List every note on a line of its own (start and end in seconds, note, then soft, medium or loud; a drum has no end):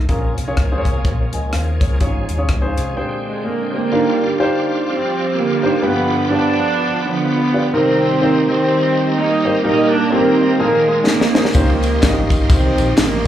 0.09 0.33 A#1 medium
0.09 0.81 A#2 medium
0.09 2.94 F3 medium
0.09 1.99 A#3 medium
0.09 0.32 C#4 medium
0.09 1.99 C#4 medium
0.09 0.32 F4 medium
0.09 1.99 G#4 medium
0.09 0.32 G#4 medium
0.09 0.32 A#4 medium
0.09 kick medium
0.09 closed hi-hat medium
0.37 0.54 C2 medium
0.37 closed hi-hat medium
0.48 0.59 C#4 medium
0.48 0.59 F4 medium
0.48 0.59 G#4 medium
0.48 0.59 C#5 medium
0.57 0.81 C#2 medium
0.57 kick medium
0.57 cross-stick medium
0.57 closed hi-hat medium
0.72 1.25 C#4 medium
0.72 1.25 F4 medium
0.72 1.25 G#4 medium
0.72 0.78 C5 medium
0.78 1.28 C#5 medium
0.85 1.02 C2 medium
0.85 kick medium
0.85 closed hi-hat medium
1.05 1.29 A#1 medium
1.05 kick loud
1.05 closed hi-hat medium
1.33 1.50 C#2 medium
1.33 1.53 D#5 soft
1.33 1.52 G#5 medium
1.33 closed hi-hat medium
1.53 1.77 D#2 medium
1.53 1.80 C5 soft
1.53 1.80 F5 medium
1.53 cross-stick medium
1.53 closed hi-hat medium
1.81 1.98 C#2 medium
1.81 1.99 G#4 soft
1.81 2.00 C#5 medium
1.81 kick medium
1.81 closed hi-hat medium
2.00 2.25 G#1 medium
2.00 2.73 G#2 medium
2.00 3.91 G#3 medium
2.00 2.24 C#4 medium
2.00 2.96 C#4 medium
2.00 2.24 F4 medium
2.00 2.24 G#4 medium
2.00 2.96 G#4 medium
2.00 2.24 C#5 medium
2.00 kick medium
2.00 closed hi-hat medium
2.29 2.46 D#2 medium
2.29 closed hi-hat medium
2.38 2.50 C#4 medium
2.38 2.50 F4 medium
2.38 2.50 G#4 medium
2.38 2.50 C#5 medium
2.49 2.73 C#2 medium
2.49 kick medium
2.49 cross-stick medium
2.49 closed hi-hat medium
2.62 2.96 C#4 medium
2.62 2.69 D#4 medium
2.62 2.95 G#4 medium
2.62 2.95 C5 medium
2.68 2.99 F4 medium
2.77 2.94 C2 medium
2.77 closed hi-hat medium
2.97 3.69 A#2 medium
2.97 3.92 D3 medium
2.97 3.92 C4 soft
2.97 3.77 D4 medium
2.97 3.44 G4 medium
2.97 3.43 G#4 medium
2.97 3.45 C5 medium
2.97 3.91 G5 medium
3.26 3.44 G#3 medium
3.44 3.72 A#3 medium
3.44 3.71 G#4 soft
3.44 3.71 D5 medium
3.72 4.64 D3 medium
3.72 4.64 G3 medium
3.72 4.64 A#3 medium
3.72 3.91 G4 soft
3.72 4.18 C5 medium
3.92 4.64 D3 medium
3.92 4.22 D4 medium
3.92 4.22 D#4 medium
3.92 5.81 F4 medium
3.92 4.22 F4 medium
3.92 5.81 G4 medium
3.92 4.22 G4 medium
3.92 4.22 A#4 medium
3.92 7.69 D5 medium
3.92 5.81 F5 medium
4.40 4.93 D4 medium
4.40 4.93 D#4 medium
4.40 4.93 F4 medium
4.40 4.93 G4 medium
4.40 4.93 C5 loud
4.88 5.80 F3 medium
4.88 5.35 G3 medium
4.88 5.32 C4 medium
5.35 5.80 D3 medium
5.35 5.80 G3 medium
5.35 5.83 A#3 medium
5.63 5.74 D4 medium
5.63 5.74 D#4 medium
5.63 5.74 F4 medium
5.63 5.74 G4 medium
5.63 5.74 C5 medium
5.82 6.54 G2 medium
5.82 6.75 D3 medium
5.82 6.30 F3 medium
5.82 6.13 B3 medium
5.82 6.30 B3 loud
5.82 6.13 D4 medium
5.82 7.71 F4 medium
5.82 6.13 F4 medium
5.82 6.13 G4 medium
5.82 6.13 B4 medium
5.82 7.72 B4 medium
5.82 7.71 G5 medium
6.30 7.06 F3 medium
6.30 6.84 B3 medium
6.30 7.04 B3 medium
6.30 7.06 D4 loud
6.30 6.84 D4 medium
6.30 6.84 F4 medium
6.30 6.84 G4 medium
6.30 6.84 D5 medium
7.06 7.70 D3 medium
7.06 7.70 F3 medium
7.06 7.73 B3 loud
7.54 7.65 B3 medium
7.54 7.65 D4 medium
7.54 7.65 F4 medium
7.54 7.65 G4 medium
7.54 7.65 D5 medium
7.73 8.45 C3 medium
7.73 8.49 D#3 medium
7.73 8.49 G3 medium
7.73 8.04 A#3 medium
7.73 8.47 C4 loud
7.73 8.04 C4 medium
7.73 8.04 D#4 medium
7.73 8.04 G4 medium
7.73 10.57 G4 medium
7.73 8.04 A#4 medium
7.73 9.63 C5 medium
7.73 13.27 D#5 medium
7.73 9.63 A#5 medium
8.22 8.75 A#3 medium
8.22 8.75 C4 medium
8.22 8.75 D#4 medium
8.22 8.75 G4 medium
8.22 8.75 C5 medium
8.48 9.41 D#3 medium
8.48 9.16 G3 medium
8.48 9.12 C4 loud
9.15 9.61 G3 medium
9.15 9.61 A#3 medium
9.15 9.63 D#4 loud
9.45 9.56 A#3 medium
9.45 9.56 C4 medium
9.45 9.55 D#4 medium
9.45 9.55 G4 medium
9.45 9.56 C5 medium
9.64 10.36 A#2 medium
9.64 9.94 G3 medium
9.64 10.12 G3 medium
9.64 9.94 A#3 medium
9.64 10.59 A#3 medium
9.64 10.56 A#3 medium
9.64 9.94 D#4 medium
9.64 9.90 D#4 loud
9.64 9.94 G4 medium
9.64 9.94 A#4 medium
9.64 10.58 A#4 medium
9.64 10.58 A#5 medium
9.92 10.12 D4 loud
10.12 10.57 D#3 medium
10.12 10.60 G3 medium
10.12 10.57 G3 medium
10.12 10.59 A#3 medium
10.12 10.59 C4 loud
10.12 10.59 D#4 medium
10.12 10.60 G4 medium
10.12 10.19 A4 medium
10.18 10.63 A#4 medium
10.59 11.31 A#2 medium
10.59 11.08 D#3 medium
10.59 11.07 F3 medium
10.59 10.87 A#3 loud
10.59 11.19 A#3 medium
10.59 11.19 D#4 medium
10.59 11.19 F4 medium
10.59 11.54 G#4 medium
10.59 11.19 G#4 medium
10.59 10.66 A4 medium
10.59 11.52 F5 medium
10.59 11.54 A#5 medium
10.66 11.22 A#4 medium
10.86 11.07 G#3 medium
11.07 11.52 D#3 medium
11.07 11.52 F3 medium
11.07 11.53 A#3 loud
11.07 snare medium
11.21 snare medium
11.35 11.46 A#3 medium
11.35 11.46 D#4 medium
11.35 11.46 F4 medium
11.35 11.46 G#4 medium
11.35 11.46 C5 medium
11.35 snare loud
11.45 snare medium
11.53 11.95 C#2 loud
11.53 12.27 C#3 medium
11.53 12.46 D#3 medium
11.53 12.46 F3 medium
11.53 12.26 A#3 medium
11.53 11.85 C#4 medium
11.53 11.85 D#4 medium
11.53 11.85 F4 medium
11.53 13.27 G4 medium
11.53 11.85 G4 medium
11.53 11.85 C5 medium
11.53 13.27 F5 medium
11.53 13.27 C6 medium
11.53 kick loud
11.53 ride medium
11.53 tambourine medium
11.83 ride medium
11.83 tambourine medium
12.03 12.43 G#1 medium
12.03 12.56 C#4 medium
12.03 12.56 D#4 medium
12.03 12.56 F4 medium
12.03 12.56 G4 medium
12.03 12.09 D5 medium
12.03 kick loud
12.03 snare loud
12.03 clap medium
12.03 ride medium
12.03 tambourine medium
12.09 12.59 D#5 medium
12.30 kick medium
12.30 ride medium
12.30 tambourine medium
12.49 12.74 C2 loud
12.49 13.25 D#3 medium
12.49 13.27 F3 medium
12.49 12.94 C4 medium
12.49 kick loud
12.49 clap medium
12.49 ride medium
12.49 tambourine medium
12.78 12.94 A#1 loud
12.78 ride soft
12.78 tambourine medium
12.97 13.27 A1 medium
12.97 13.26 A#3 medium
12.97 snare loud
12.97 clap loud
12.97 ride medium
12.97 tambourine loud